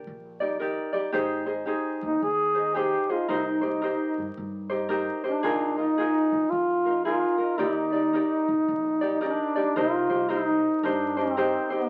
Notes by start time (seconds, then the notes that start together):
Already playing: G4 A#4 D5
0.07 A#1
0.40 D#4 G4 D5
0.59 D#4 G4 A#4 D5
0.93 D#4 G4 D5
1.12 G#1 D#4 G4 G#4 C5
1.46 D#4 G#4 C5
1.66 D#4 G4 G#4 C5
2.02 D#2 D#4
2.22 D#2 G#4
2.54 D#4 G#4 C5
2.74 D#4 G4 G#4 C5
3.09 D#4 F4 G#4 C5
3.29 C2 D#4 G4 A#4 C5
3.61 D#4 G4 C5
3.81 D#4 G4 A#4 C5
4.18 G2
4.37 G2
4.70 D#4 G4 C5
4.89 D#4 G4 A#4 C5
5.24 D4 D#4 G4 C5
5.43 A#1 D#4 F4 G#4 A#4
5.77 D#4 F4 A#4
5.98 D#4 F4 G#4 A#4
6.32 F2
6.50 F2 F4
6.85 D#4 F4 A#4
7.04 D#4 F4 G#4 A#4
7.38 D#4 F4 A#4
7.58 D#2 D#4 G4 A#4 D5
7.92 D#4 G4 D5
8.13 D#4 G4 A#4 D5
8.48 A#1
8.68 A#1
9.01 D#4 G4 D5
9.21 D4 D#4 G4 A#4 D5
9.56 D#4 G4 D5
9.76 C2 D#4 F4 G4 A#4 C5
10.10 C2 D#4 G4 C5
10.29 D#4 G4 A#4 C5
10.83 G2 D4 D#4 G4 A#4 C5
11.17 C4 D#4 G4 C5
11.37 D#4 G4 A#4 C5
11.70 A#3 D#4 G4 C5